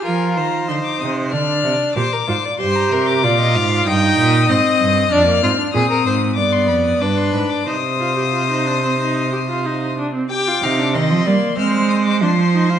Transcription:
X:1
M:4/4
L:1/16
Q:1/4=94
K:Fm
V:1 name="Violin"
a2 b2 c' =d' e'2 f'4 d'4 | c' b c' =d'4- d' e'8 | [K:Cm] f'4 e'4 d' c' =b e' d' c' b d' | e'12- e'2 z2 |
d'4 c'4 f'2 e' d' c'4 |]
V:2 name="Violin"
B2 c6 =d4 c B c d | c2 B2 =d e f2 g4 e4 | [K:Cm] d2 F2 A B c2 d4 =B4 | c12- c2 z2 |
g2 f2 e2 d2 c8 |]
V:3 name="Viola"
F4 E4 =D4 G2 F2 | G4 F4 E4 C4 | [K:Cm] D B, C D C4 =B,4 D4 | E2 F G F E D C E2 G F E2 D C |
G F E D C2 B,2 C4 D2 E F |]
V:4 name="Cello" clef=bass
F,2 E,2 =D,2 C,2 D,2 C,2 B,,2 A,,2 | G,,2 C,2 B,,2 A,,2 G,,2 B,,2 A,,2 G,,2 | [K:Cm] F,,2 A,,2 B,,2 A,,2 G,,2 F,,2 G,,2 A,,2 | C,12- C,2 z2 |
z2 C,2 E, F, G,2 A,4 F,4 |]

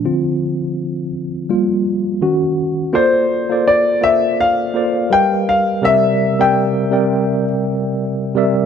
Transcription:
X:1
M:4/4
L:1/16
Q:"Swing 16ths" 1/4=83
K:Bblyd
V:1 name="Grand piano"
z16 | c4 d2 e2 f4 g2 f2 | e3 g6 z6 z |]
V:2 name="Tine electric piano"
[D,CF]6 z2 [G,B,F]4 [_E,_D_G]4 | [B,FAcd]2 z [B,FAcd]2 z [B,FAcd]3 z [B,FAcd]2 [G,G^A=B^df]3 z | [C,G,Bde]2 z [C,G,Bde]2 z [C,G,Bdg]6 z2 [C,G,Bde]2 |]
V:3 name="Tine electric piano" clef=bass
F,12 z4 | z16 | z16 |]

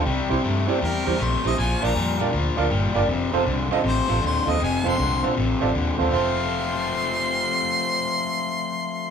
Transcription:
X:1
M:4/4
L:1/16
Q:"Swing" 1/4=158
K:Fmix
V:1 name="Harmonica"
z8 B4 c2 e2 | _a2 b4 z8 z2 | z8 c4 c2 e2 | _a2 c'4 z8 z2 |
c'16- | c'16 |]
V:2 name="Grand piano"
z2 [C=EGc] z3 [CEGd] z3 [CEGc] z3 [CEGc] z | z2 [DFBd] z3 [DFBd] z3 [DFBd] z3 [DFBd] z | z2 [CFAc] z3 [CFAe] z3 [CFAc] z3 [CFAe] z | z2 [CFAc] z3 [CFAc] z3 [CFAd] z3 [CFAc] z |
[CFAc]16- | [CFAc]16 |]
V:3 name="Overdriven electric guitar" clef=bass
[C,G,]2 [C,G,]2 [C,A,]2 [C,A,]2 [C,G,]2 [C,G,]2 [C,A,]2 [C,A,]2 | [B,,F,]2 [B,,F,]2 [B,,G,]2 [B,,G,]2 [B,,F,]2 [B,,F,]2 [B,,G,]2 [B,,G,]2 | [F,,C,]2 [F,,C,]2 [F,,D,]2 [F,,D,]2 [F,,C,]2 [F,,C,]2 [F,,D,]2 [F,,D,]2 | [F,,C,]2 [F,,C,]2 [F,,D,]2 [F,,D,]2 [F,,C,]2 [F,,C,]2 [F,,D,]2 [F,,D,]2 |
[F,A,CF]16- | [F,A,CF]16 |]
V:4 name="Fingered electric bass" clef=bass
C,,2 C,,2 G,,4 =E,,2 E,,2 B,,,2 B,,,2 | B,,,2 B,,,2 F,,4 D,,2 D,,2 G,,,2 G,,,2 | F,,,2 F,,,2 C,,4 A,,,2 A,,,2 E,,2 E,,2 | F,,,2 F,,,2 C,,4 A,,,2 A,,,2 E,,2 E,,2 |
F,,,16- | F,,,16 |]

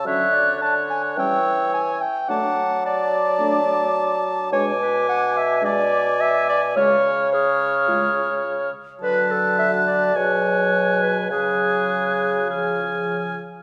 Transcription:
X:1
M:4/4
L:1/8
Q:1/4=107
K:Dlyd
V:1 name="Flute"
f'2 f'2 e'3 z | d'2 d'6 | [K:C#phr] d'4 d'2 d'2 | ^e'2 e'4- e' z |
f'4 f'4 | f'4 ^e'3 z |]
V:2 name="Cor anglais"
c2 c2 c3 z | a2 a6 | [K:C#phr] g4 g4 | c2 c4- c z |
a4 g4 | g4 g3 z |]
V:3 name="Clarinet"
e d a g =g2 ^g =g | f2 d4- d z | [K:C#phr] c B f e d2 e d | c2 G4- G z |
B A e d c3 B | G6- G z |]
V:4 name="French horn section"
[F,C] z3 [=G,C] z3 | [A,D] z3 [A,D] z3 | [K:C#phr] [G,D] z3 [G,D] z3 | [G,^E] z3 [G,E] z3 |
[F,F]4 [F,G]4 | [F,G]4 [^E,G]3 z |]
V:5 name="Bassoon" clef=bass
D,4 E,3 z | F,8 | [K:C#phr] B,,8 | C,6- C, z |
D,4 B,,4 | C,6- C, z |]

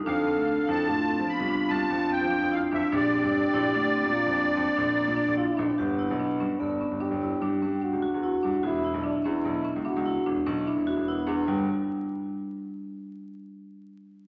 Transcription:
X:1
M:7/4
L:1/16
Q:1/4=147
K:Glyd
V:1 name="Accordion"
=f6 a6 b4 a4 g4 f2 e2 | d24 z4 | z24 z4 | z24 z4 |
z24 z4 |]
V:2 name="French horn"
A8 =F16- F4 | G12 =F4 D6 z2 F4 | B,8 D4 G8 F8 | E4 D2 E6 F6 z2 E4 B,4 |
B,2 z24 z2 |]
V:3 name="Marimba"
D2 =C2 D2 E2 D2 C2 B,2 D2 C2 D2 C2 D2 E2 D2 | D2 =C2 D2 E2 D2 C2 _B,2 D2 C2 D2 B,2 D2 E2 D2 | G2 E2 D2 C2 B,2 C2 D2 E2 D2 C2 D2 F2 E2 D2 | F2 E2 D2 C2 B,2 C2 D2 E2 D2 C2 D2 F2 E2 D2 |
G,2 z24 z2 |]
V:4 name="Grand piano" clef=bass
=F,,3 D,,2 z F,,2 A,,3 =F,2 =C,,3 C,, z F,,3 F, z F,,2 z F,, z | _B,,,3 G,,,2 z B,,,2 D,,3 _B,,2 =F,,3 F,, z B,,,3 B,, z B,,,2 z B,,, z | G,,,3 B,,,3 G,, z G,,,2 z G,,,2 G,,,2 z G,,2 G,,3 C,, z E,,2 z G,, z | E,,,3 B,,,2 z E,,2 B,,,2 z C,, z C,,2 z E,,, z B,,,2 z E,,, z E,,,2 z E,,2 |
G,,,2 z24 z2 |]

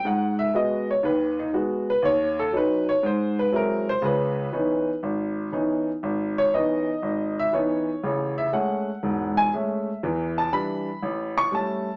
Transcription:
X:1
M:4/4
L:1/16
Q:"Swing" 1/4=120
K:C#m
V:1 name="Upright piano"
f2 e2 d2 c2 B2 D2 z2 B2 | c2 A2 B2 c2 ^B2 =B2 ^A2 ^B2 | B8 z8 | z2 c2 d6 e2 c4- |
c2 e2 f6 g2 e4- | e2 a2 b6 c'2 a3 z |]
V:2 name="Upright piano" clef=bass
G,,4 [G,B,F]2 z2 [D,,D,]4 [G,B,F]2 z2 | D,,4 [F,CD]2 z2 G,,4 [F,G,^B,E]2 z2 | [C,,C,]4 [E,B,CD]2 z2 G,,,4 [E,B,CD]2 z2 | G,,,4 [E,B,CD]2 z2 G,,,4 [E,B,CD]2 z2 |
[A,,,C,]4 [G,A,C]2 z2 [E,,,G,,]4 [G,A,C]2 z2 | [E,,E,]4 [E,=G,=D]2 z2 A,,,4 [G,A,C]2 z2 |]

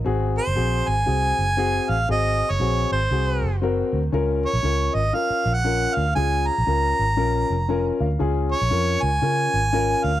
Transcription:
X:1
M:4/4
L:1/16
Q:"Swing" 1/4=118
K:Db
V:1 name="Harmonica"
z2 c4 a8 f2 | e3 d3 c6 z4 | z2 d4 e2 f3 g3 f2 | a2 b12 z2 |
z2 d4 a8 f2 |]
V:2 name="Upright piano"
[CGA]2 z2 [CGA]2 z2 [CGA]2 z2 [CGA]2 z2 | [CGA]2 z2 [CGA]2 z2 [CGA]2 z2 [CGB]2 z2 | [DFB]2 z2 [DFB]2 z2 [DFB]2 z2 [DFB]2 z2 | [DFA]2 z2 [DFB]2 z2 [DFB]2 z2 [DFBa]2 f2 |
[DFA]2 z2 [DFB]2 z2 [DFB]2 z2 [DFB]2 z2 |]
V:3 name="Fingered electric bass" clef=bass
A,,,3 G,,, B,,,2 A,,,2 C,,2 G,,,4 =A,,,2 | A,,,3 G,,, B,,,2 A,,,2 C,,2 G,,,4 =D,,2 | D,,3 B,,, D,,2 A,,,2 z2 B,,,4 =D,,2 | D,,3 B,,, D,,2 A,,,2 B,,,2 F,,,4 =D,,2 |
D,,3 B,,, F,,2 D,,2 D,2 A,,,4 =D,,2 |]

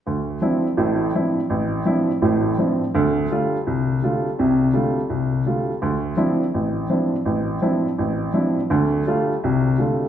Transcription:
X:1
M:4/4
L:1/8
Q:"Swing" 1/4=166
K:Dm
V:1 name="Grand piano" clef=bass
D,,2 [F,CDE] z [A,,,A,,]2 [F,CDE] z | A,,,2 [F,CDE] z [A,,,A,,]2 [F,CDE] z | [D,,D,]2 [D,G,A,F] z C,,2 [D,G,A,F] z | [C,,C,]2 [D,G,A,F] z C,,2 [D,G,A,F] z |
D,,2 [F,CDE] z A,,,2 [F,CDE] z | A,,,2 [F,CDE] z A,,,2 [F,CDE] z | [D,,D,]2 [D,G,A,F] z [C,,C,]2 [D,G,A,F] z |]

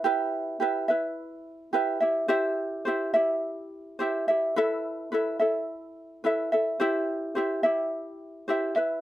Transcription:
X:1
M:4/4
L:1/8
Q:"Swing 16ths" 1/4=106
K:C
V:1 name="Ukulele"
[EGBe]2 [EGBe] [EBe]3 [EGBe] [EGe] | [EGce]2 [EGce] [EGe]3 [EGce] [EGe] | [EABe]2 [EABe] [EAe]3 [EABe] [EAe] | [EGce]2 [EGce] [EGe]3 [EGce] [EBe] |]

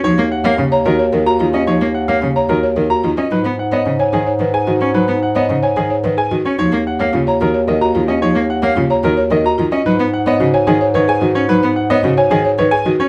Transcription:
X:1
M:3/4
L:1/16
Q:1/4=110
K:G#dor
V:1 name="Grand piano"
c z f e z a A z2 a z d | c z f e z a A z2 a z d | B z f d z g G z2 g z c | B z f d z g G z2 g z c |
c z f e z a A z d a z d | c z f e z a A z d a z d | B z f d z g G z c g z c | B z f d z g G z c g z c |]
V:2 name="Marimba"
D z2 c z c F c A F E z | D z2 c z c F c A F E z | D z2 c z c G c B G F z | D z2 c z c G c B G F z |
D z2 c E c F c A F E z | D z2 c E c F c A F E z | D z2 c F c G c B G F z | D z2 c F c G c B G F z |]
V:3 name="Cello" clef=bass
E, A, z A, C, z D, z D, z D, C | E, A, z A, C, z D, z D, z D, C | F, B, z B, C, z D, z D, z D, C | F, B, z B, C, z D, z D, z D, C |
E, A, z A, C, z D, z D, z D, C | E, A, z A, C, z D, z D, z D, C | F, B, z B, C, z D, z D, z D, C | F, B, z B, C, z D, z D, z D, C |]
V:4 name="Bass clarinet" clef=bass
D,,12- | D,,12 | G,,12- | G,,12 |
D,,12- | D,,12 | G,,12- | G,,12 |]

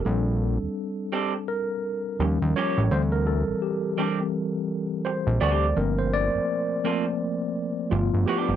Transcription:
X:1
M:4/4
L:1/16
Q:"Swing 16ths" 1/4=84
K:Gdor
V:1 name="Clean electric guitar"
z6 [G,CDA] z6 z [F,B,_DG]2 | z6 [G,CDG] z6 z [G,CDG]2 | z6 [B,CFA] z6 z [F,=B,DG]2 |]
V:2 name="Tine electric piano"
z8 B6 _d2 | c B A2 G2 z6 c2 d2 | B c d6 z4 F2 G2 |]
V:3 name="Tine electric piano"
[G,CDA]12 [F,G,_D]4 | [E,G,C]2 z4 [E,G,C]2 z8 | [F,A,B,C]6 [F,A,B,C]2 z4 [F,A,=B,]4 |]
V:4 name="Analog synth bass" clef=bass
B,,,3 _E,, z8 E,, E,, z A,,, | D,,3 B,,, z8 z B,,, D,,2 | G,,,3 G,,, z8 G,,, G,,, z G,,, |]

